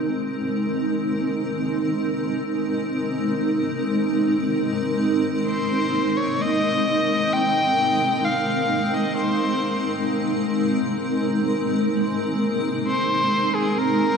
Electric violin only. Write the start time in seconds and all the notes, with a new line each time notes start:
5.47 C5
6.17 C#5
6.41 D#5
7.34 G5
8.25 F5
8.94 D#5
9.17 C5
12.87 C5
13.55 G#4
13.78 A#4